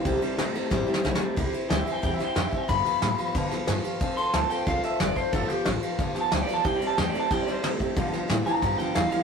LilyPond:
<<
  \new Staff \with { instrumentName = "Clean electric guitar" } { \time 4/4 \key c \major \tempo 4 = 182 g''8 r2. r8 | r4 \tuplet 3/2 { g''8 e''8 g''8 g''8 e''8 g''8 g''8 e''8 g''8 } | b''2. r4 | r8 c'''8 a''8 g''8 f''8 e''8 d''8 c''8 |
a'8 g'8 f'4 \tuplet 3/2 { r4 a''8 g''8 d''8 a''8 } | \tuplet 3/2 { g''8 d''8 a''8 g''8 d''8 a''8 g''8 d''8 c''8 } r4 | r4. bes''4 g''8 f''8 f''8 | }
  \new Staff \with { instrumentName = "Steel-string acoustic guitar" } { \time 4/4 \key c \major <c g c' e' g'>8 <c' e' g'>8 <g c' e' g'>8 <c' e' g'>8 <c g c' e' g'>8 <c' e' g'>8 <g c' e' g'>8 <c' e' g'>8 | <c g c' e' g'>8 <c' e' g'>8 <g c' e' g'>8 <c' e' g'>8 <c g c' e' g'>8 <c' e' g'>8 <g c' e' g'>8 <c' e' g'>8 | <g, d f b f' g'>8 <f b f' g'>8 <f f' g'>8 <f b f' g'>8 <g, d f b f' g'>8 <f b f' g'>8 <f b f' g'>8 <f b f' g'>8 | <f c' f' a'>8 <c' f' a'>8 <f c' f' a'>8 <c' f' a'>8 <f c' f' a'>8 <c' f' a'>8 <f c' f' a'>8 <c' f' a'>8 |
<g, d f b f' g'>8 <f b f' g'>8 <f b f' g'>8 <f b f' g'>8 <g, d f b f' g'>8 <f b f' g'>8 <f b f' g'>8 <f b f' g'>8 | <c g c' e' g'>8 <c' e' g'>8 <g c' e' g'>8 <c' e' g'>8 <c g c' e' g'>8 <c' e' g'>8 <g c' e' g'>8 <c' e' g'>8 | <g, d f b f' g'>8 <f b f' g'>8 <f b f' g'>8 <f b f' g'>8 <g, d f b f' g'>8 <f b f' g'>8 <f b f' g'>8 <f b f' g'>8 | }
  \new Staff \with { instrumentName = "Clean electric guitar" } { \clef bass \time 4/4 \key c \major <c g>8 <c g>8 <c a>8 <c a>8 <c g>8 <c g>8 <c a>8 <c a>8 | r1 | r1 | r1 |
r1 | <c g>8 <c g>8 <c a>8 <c a>8 <c g>8 <c g>8 <c a>8 <c a>8 | <g, d>8 <g, d>8 <g, e>8 <g, e>8 <g, d>8 <g, d>8 <g, e>8 <g, e>8 | }
  \new Staff \with { instrumentName = "Upright bass" } { \clef bass \time 4/4 \key c \major c,8 r8 bes,,8 r8 a,,8 r8 b,,8 r8 | c,8 r8 d,8 r8 e,8 r8 f,8 r8 | g,8 r8 a,8 r8 b,8 r8 g,8 r8 | f,8 r8 d,8 r8 c,8 r8 f,,8 r8 |
g,,8 r8 a,,8 r8 b,,8 r8 d,8 r8 | c,8 r8 e,8 r8 f,8 r8 g,8 r8 | b,8 r8 a,8 r8 g,8 r8 e,8 r8 | }
  \new DrumStaff \with { instrumentName = "Drums" } \drummode { \time 4/4 <bd cymr>8 cymr8 <cymr sn>8 cymr8 \tuplet 3/2 { <bd sn>8 r8 sn8 sn8 sn8 r8 } | <bd cymr>8 cymr8 <cymr sn>8 cymr8 <bd cymr>8 <cymr sn>8 <cymr sn>8 <bd cymr>8 | <bd cymr sn>8 <cymr sn>8 <cymr sn>8 cymr8 <bd cymr sn>8 <cymr sn>8 <cymr sn>8 cymr8 | <bd cymr>8 cymr8 <cymr sn>8 cymr8 <bd cymr sn>8 <cymr sn>8 <cymr sn>8 <bd cymr>8 |
<bd cymr sn>8 cymr8 <cymr sn>8 cymr8 <bd cymr sn>8 <cymr sn>8 <cymr sn>8 cymr8 | <bd cymr>8 cymr8 <cymr sn>8 cymr8 <bd cymr sn>8 <cymr sn>8 <cymr sn>8 <bd cymr>8 | <bd cymr>8 <cymr sn>8 <cymr sn>8 cymr8 <bd cymr sn>8 cymr8 <cymr sn>8 cymr8 | }
>>